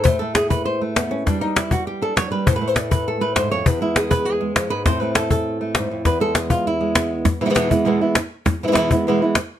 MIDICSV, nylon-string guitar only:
0, 0, Header, 1, 3, 480
1, 0, Start_track
1, 0, Tempo, 300000
1, 91, Time_signature, 4, 2, 24, 8
1, 15352, End_track
2, 0, Start_track
2, 0, Title_t, "Nylon-string guitar"
2, 0, Program_c, 0, 24
2, 57, Note_on_c, 0, 72, 106
2, 87, Note_on_c, 0, 45, 74
2, 101, Note_on_c, 0, 57, 52
2, 113, Note_on_c, 0, 64, 51
2, 299, Note_off_c, 0, 72, 0
2, 306, Note_on_c, 0, 69, 88
2, 325, Note_off_c, 0, 57, 0
2, 344, Note_on_c, 0, 57, 61
2, 558, Note_off_c, 0, 69, 0
2, 564, Note_on_c, 0, 68, 82
2, 798, Note_off_c, 0, 68, 0
2, 804, Note_on_c, 0, 71, 92
2, 1040, Note_off_c, 0, 71, 0
2, 1047, Note_on_c, 0, 72, 87
2, 1284, Note_off_c, 0, 57, 0
2, 1292, Note_off_c, 0, 72, 0
2, 1303, Note_on_c, 0, 57, 61
2, 1532, Note_off_c, 0, 64, 0
2, 1539, Note_on_c, 0, 59, 76
2, 1774, Note_on_c, 0, 61, 91
2, 1779, Note_off_c, 0, 59, 0
2, 1993, Note_off_c, 0, 57, 0
2, 2016, Note_off_c, 0, 61, 0
2, 2018, Note_off_c, 0, 45, 0
2, 2023, Note_on_c, 0, 62, 81
2, 2024, Note_on_c, 0, 55, 70
2, 2254, Note_off_c, 0, 62, 0
2, 2260, Note_on_c, 0, 63, 99
2, 2495, Note_on_c, 0, 64, 77
2, 2500, Note_off_c, 0, 63, 0
2, 2738, Note_off_c, 0, 64, 0
2, 2757, Note_on_c, 0, 66, 87
2, 2986, Note_off_c, 0, 66, 0
2, 2992, Note_on_c, 0, 67, 83
2, 3226, Note_on_c, 0, 62, 62
2, 3227, Note_off_c, 0, 67, 0
2, 3238, Note_on_c, 0, 69, 89
2, 3452, Note_off_c, 0, 55, 0
2, 3458, Note_on_c, 0, 54, 58
2, 3468, Note_off_c, 0, 69, 0
2, 3486, Note_on_c, 0, 73, 102
2, 3684, Note_off_c, 0, 54, 0
2, 3690, Note_on_c, 0, 55, 54
2, 3700, Note_off_c, 0, 73, 0
2, 3706, Note_on_c, 0, 71, 86
2, 3916, Note_off_c, 0, 62, 0
2, 3936, Note_off_c, 0, 55, 0
2, 3943, Note_on_c, 0, 45, 71
2, 3953, Note_off_c, 0, 71, 0
2, 3953, Note_on_c, 0, 72, 100
2, 4088, Note_off_c, 0, 72, 0
2, 4095, Note_on_c, 0, 71, 97
2, 4178, Note_on_c, 0, 57, 61
2, 4279, Note_off_c, 0, 71, 0
2, 4279, Note_on_c, 0, 72, 87
2, 4426, Note_off_c, 0, 72, 0
2, 4426, Note_on_c, 0, 74, 83
2, 4651, Note_off_c, 0, 74, 0
2, 4658, Note_on_c, 0, 71, 83
2, 4899, Note_off_c, 0, 71, 0
2, 4925, Note_on_c, 0, 69, 89
2, 5113, Note_off_c, 0, 57, 0
2, 5133, Note_on_c, 0, 57, 55
2, 5141, Note_on_c, 0, 71, 102
2, 5152, Note_off_c, 0, 69, 0
2, 5364, Note_off_c, 0, 71, 0
2, 5371, Note_on_c, 0, 72, 95
2, 5388, Note_on_c, 0, 44, 61
2, 5614, Note_off_c, 0, 72, 0
2, 5623, Note_off_c, 0, 44, 0
2, 5623, Note_on_c, 0, 73, 106
2, 5632, Note_on_c, 0, 41, 58
2, 5826, Note_off_c, 0, 57, 0
2, 5858, Note_off_c, 0, 41, 0
2, 5860, Note_off_c, 0, 45, 0
2, 5864, Note_on_c, 0, 40, 79
2, 5874, Note_off_c, 0, 73, 0
2, 5874, Note_on_c, 0, 71, 85
2, 6091, Note_on_c, 0, 56, 58
2, 6102, Note_off_c, 0, 71, 0
2, 6109, Note_on_c, 0, 64, 82
2, 6335, Note_on_c, 0, 68, 91
2, 6342, Note_off_c, 0, 64, 0
2, 6571, Note_on_c, 0, 71, 99
2, 6576, Note_off_c, 0, 68, 0
2, 6804, Note_on_c, 0, 68, 73
2, 6813, Note_off_c, 0, 71, 0
2, 7030, Note_off_c, 0, 56, 0
2, 7049, Note_on_c, 0, 56, 62
2, 7290, Note_off_c, 0, 40, 0
2, 7296, Note_on_c, 0, 41, 60
2, 7525, Note_on_c, 0, 71, 101
2, 7528, Note_off_c, 0, 68, 0
2, 7531, Note_off_c, 0, 41, 0
2, 7537, Note_on_c, 0, 44, 60
2, 7741, Note_off_c, 0, 56, 0
2, 7763, Note_off_c, 0, 71, 0
2, 7770, Note_on_c, 0, 72, 103
2, 7775, Note_off_c, 0, 44, 0
2, 7781, Note_on_c, 0, 45, 70
2, 7789, Note_on_c, 0, 57, 51
2, 7806, Note_on_c, 0, 60, 52
2, 7817, Note_on_c, 0, 64, 51
2, 8002, Note_off_c, 0, 57, 0
2, 8009, Note_off_c, 0, 72, 0
2, 8009, Note_on_c, 0, 71, 91
2, 8021, Note_on_c, 0, 57, 60
2, 8236, Note_off_c, 0, 71, 0
2, 8243, Note_on_c, 0, 69, 88
2, 8477, Note_off_c, 0, 69, 0
2, 8496, Note_on_c, 0, 69, 93
2, 8954, Note_off_c, 0, 57, 0
2, 8973, Note_on_c, 0, 57, 66
2, 9212, Note_off_c, 0, 69, 0
2, 9233, Note_on_c, 0, 44, 58
2, 9455, Note_off_c, 0, 44, 0
2, 9462, Note_on_c, 0, 41, 63
2, 9661, Note_off_c, 0, 57, 0
2, 9676, Note_off_c, 0, 60, 0
2, 9685, Note_off_c, 0, 41, 0
2, 9691, Note_on_c, 0, 40, 76
2, 9693, Note_off_c, 0, 45, 0
2, 9701, Note_on_c, 0, 71, 89
2, 9924, Note_on_c, 0, 56, 63
2, 9933, Note_off_c, 0, 71, 0
2, 9939, Note_on_c, 0, 69, 105
2, 10173, Note_off_c, 0, 69, 0
2, 10176, Note_off_c, 0, 64, 0
2, 10176, Note_on_c, 0, 68, 90
2, 10399, Note_off_c, 0, 68, 0
2, 10405, Note_on_c, 0, 65, 99
2, 10646, Note_off_c, 0, 65, 0
2, 10673, Note_on_c, 0, 64, 95
2, 10870, Note_off_c, 0, 56, 0
2, 10889, Note_on_c, 0, 56, 60
2, 11136, Note_on_c, 0, 59, 51
2, 11380, Note_off_c, 0, 64, 0
2, 11580, Note_off_c, 0, 56, 0
2, 11581, Note_off_c, 0, 40, 0
2, 11844, Note_off_c, 0, 59, 0
2, 11857, Note_on_c, 0, 47, 54
2, 11858, Note_on_c, 0, 52, 53
2, 11858, Note_on_c, 0, 56, 56
2, 11863, Note_on_c, 0, 59, 51
2, 11867, Note_on_c, 0, 64, 56
2, 11904, Note_off_c, 0, 47, 0
2, 11909, Note_off_c, 0, 56, 0
2, 11912, Note_off_c, 0, 52, 0
2, 11918, Note_off_c, 0, 59, 0
2, 11923, Note_on_c, 0, 47, 57
2, 11928, Note_off_c, 0, 64, 0
2, 11928, Note_on_c, 0, 56, 67
2, 11932, Note_on_c, 0, 52, 68
2, 11937, Note_on_c, 0, 59, 76
2, 11948, Note_on_c, 0, 64, 62
2, 11974, Note_off_c, 0, 47, 0
2, 11980, Note_off_c, 0, 52, 0
2, 11986, Note_off_c, 0, 56, 0
2, 11990, Note_off_c, 0, 59, 0
2, 11991, Note_off_c, 0, 64, 0
2, 11994, Note_on_c, 0, 47, 66
2, 12000, Note_on_c, 0, 52, 79
2, 12005, Note_on_c, 0, 56, 81
2, 12009, Note_on_c, 0, 59, 82
2, 12010, Note_on_c, 0, 64, 75
2, 12056, Note_off_c, 0, 47, 0
2, 12058, Note_off_c, 0, 56, 0
2, 12063, Note_off_c, 0, 52, 0
2, 12065, Note_off_c, 0, 59, 0
2, 12069, Note_off_c, 0, 64, 0
2, 12072, Note_on_c, 0, 40, 78
2, 12075, Note_on_c, 0, 47, 90
2, 12077, Note_on_c, 0, 56, 86
2, 12082, Note_on_c, 0, 52, 93
2, 12084, Note_on_c, 0, 59, 87
2, 12088, Note_on_c, 0, 64, 80
2, 12296, Note_off_c, 0, 64, 0
2, 12305, Note_off_c, 0, 59, 0
2, 12311, Note_off_c, 0, 40, 0
2, 12312, Note_off_c, 0, 47, 0
2, 12313, Note_off_c, 0, 56, 0
2, 12316, Note_off_c, 0, 52, 0
2, 12316, Note_on_c, 0, 64, 57
2, 12324, Note_on_c, 0, 59, 53
2, 12337, Note_on_c, 0, 56, 51
2, 12342, Note_on_c, 0, 52, 47
2, 12552, Note_off_c, 0, 64, 0
2, 12557, Note_off_c, 0, 59, 0
2, 12557, Note_on_c, 0, 40, 77
2, 12561, Note_off_c, 0, 52, 0
2, 12563, Note_off_c, 0, 56, 0
2, 12565, Note_on_c, 0, 47, 79
2, 12580, Note_on_c, 0, 52, 72
2, 12580, Note_on_c, 0, 56, 88
2, 12587, Note_on_c, 0, 59, 82
2, 12598, Note_on_c, 0, 64, 80
2, 12794, Note_off_c, 0, 40, 0
2, 12797, Note_off_c, 0, 47, 0
2, 12802, Note_off_c, 0, 64, 0
2, 12805, Note_off_c, 0, 52, 0
2, 12805, Note_off_c, 0, 56, 0
2, 12808, Note_off_c, 0, 59, 0
2, 12821, Note_on_c, 0, 64, 55
2, 12832, Note_on_c, 0, 59, 47
2, 12836, Note_on_c, 0, 56, 44
2, 12848, Note_on_c, 0, 52, 41
2, 13046, Note_off_c, 0, 64, 0
2, 13051, Note_off_c, 0, 59, 0
2, 13053, Note_off_c, 0, 56, 0
2, 13059, Note_off_c, 0, 52, 0
2, 13811, Note_on_c, 0, 47, 50
2, 13813, Note_on_c, 0, 52, 57
2, 13814, Note_on_c, 0, 59, 62
2, 13823, Note_on_c, 0, 56, 55
2, 13829, Note_on_c, 0, 64, 53
2, 13861, Note_off_c, 0, 47, 0
2, 13865, Note_off_c, 0, 56, 0
2, 13867, Note_off_c, 0, 52, 0
2, 13871, Note_off_c, 0, 64, 0
2, 13873, Note_off_c, 0, 59, 0
2, 13880, Note_on_c, 0, 47, 68
2, 13884, Note_on_c, 0, 56, 67
2, 13887, Note_on_c, 0, 52, 71
2, 13890, Note_on_c, 0, 64, 76
2, 13893, Note_on_c, 0, 59, 62
2, 13931, Note_off_c, 0, 47, 0
2, 13937, Note_off_c, 0, 52, 0
2, 13943, Note_off_c, 0, 59, 0
2, 13945, Note_off_c, 0, 56, 0
2, 13950, Note_on_c, 0, 47, 77
2, 13953, Note_off_c, 0, 64, 0
2, 13956, Note_on_c, 0, 52, 80
2, 13962, Note_on_c, 0, 59, 74
2, 13964, Note_on_c, 0, 56, 84
2, 13972, Note_on_c, 0, 64, 83
2, 14005, Note_off_c, 0, 47, 0
2, 14010, Note_off_c, 0, 56, 0
2, 14011, Note_off_c, 0, 52, 0
2, 14015, Note_off_c, 0, 59, 0
2, 14021, Note_on_c, 0, 40, 86
2, 14024, Note_on_c, 0, 47, 74
2, 14027, Note_off_c, 0, 64, 0
2, 14029, Note_on_c, 0, 56, 100
2, 14030, Note_on_c, 0, 52, 78
2, 14034, Note_on_c, 0, 59, 89
2, 14046, Note_on_c, 0, 64, 93
2, 14243, Note_off_c, 0, 64, 0
2, 14247, Note_off_c, 0, 40, 0
2, 14248, Note_off_c, 0, 47, 0
2, 14251, Note_off_c, 0, 56, 0
2, 14252, Note_off_c, 0, 52, 0
2, 14254, Note_off_c, 0, 59, 0
2, 14262, Note_on_c, 0, 64, 59
2, 14276, Note_on_c, 0, 59, 58
2, 14289, Note_on_c, 0, 56, 49
2, 14301, Note_on_c, 0, 52, 52
2, 14488, Note_off_c, 0, 64, 0
2, 14495, Note_off_c, 0, 59, 0
2, 14501, Note_off_c, 0, 56, 0
2, 14507, Note_off_c, 0, 52, 0
2, 14511, Note_on_c, 0, 40, 79
2, 14521, Note_on_c, 0, 47, 84
2, 14527, Note_on_c, 0, 56, 83
2, 14530, Note_on_c, 0, 52, 90
2, 14532, Note_on_c, 0, 59, 96
2, 14550, Note_on_c, 0, 64, 96
2, 14732, Note_off_c, 0, 40, 0
2, 14732, Note_off_c, 0, 64, 0
2, 14737, Note_off_c, 0, 47, 0
2, 14739, Note_off_c, 0, 59, 0
2, 14740, Note_off_c, 0, 56, 0
2, 14742, Note_off_c, 0, 52, 0
2, 14751, Note_on_c, 0, 64, 56
2, 14758, Note_on_c, 0, 59, 50
2, 14777, Note_on_c, 0, 56, 47
2, 14782, Note_on_c, 0, 52, 47
2, 14972, Note_off_c, 0, 56, 0
2, 14973, Note_off_c, 0, 64, 0
2, 14975, Note_off_c, 0, 52, 0
2, 14976, Note_off_c, 0, 59, 0
2, 15352, End_track
3, 0, Start_track
3, 0, Title_t, "Muted nylon-string guitar strokes"
3, 11600, Note_on_c, 9, 29, 67
3, 11760, Note_off_c, 9, 29, 0
3, 13069, Note_on_c, 9, 29, 64
3, 13229, Note_off_c, 9, 29, 0
3, 13534, Note_on_c, 9, 29, 70
3, 13694, Note_off_c, 9, 29, 0
3, 14986, Note_on_c, 9, 29, 65
3, 15146, Note_off_c, 9, 29, 0
3, 15352, End_track
0, 0, End_of_file